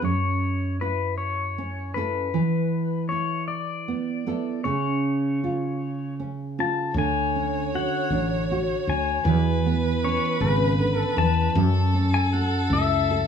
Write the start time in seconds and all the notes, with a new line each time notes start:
0.02 F#2 C#5
0.81 E4 B4
1.18 C#5
1.58 C#4
1.94 C#4 E4 A4 B4
2.34 E3
3.09 E4 C#5
3.48 D5
3.88 B3
4.26 B3 E4 A4
4.64 C#3 C#5
5.44 F4
6.20 C#4
6.58 C#4 F4 A5
6.94 D2 D3 C#5
6.98 G#5
7.36 C#4
7.74 F#4 F#5
8.10 A1 D4
8.51 F#4
8.87 D2 D4 G#5
9.24 E2 E3 B4
9.66 B3
10.04 C#4 C#5
10.40 G#1 C#3 B4
10.79 D3
10.99 A4
11.17 E2 E3 A5
11.55 F#2 A4
11.94 C#4
12.14 G#5
12.33 A4 F#5
12.70 C#2 E4 E5
13.11 A4